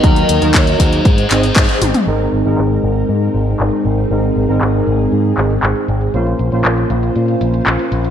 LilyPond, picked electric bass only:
\new Staff \with { instrumentName = "Picked electric bass" } { \clef bass \time 4/4 \key aes \mixolydian \tempo 4 = 118 ees,16 r16 ees,16 ees,16 ees,16 r16 ees,16 r16 aes,16 r16 aes,,16 r16 aes,16 r16 aes,,16 r16 | aes,,16 r16 aes,,16 aes,,16 aes,,16 r16 aes,,16 r16 aes,16 r16 aes,,16 r16 aes,,16 r16 aes,,16 r16 | aes,,16 r16 aes,,16 aes,,16 aes,,16 r16 aes,,16 r16 aes,16 r16 aes,,16 r16 aes,,16 r16 aes,,16 r16 | bes,,16 r16 bes,,16 bes,,16 bes,,16 r16 bes,,16 r16 bes,16 r16 bes,,16 r16 bes,,16 r16 bes,,16 r16 | }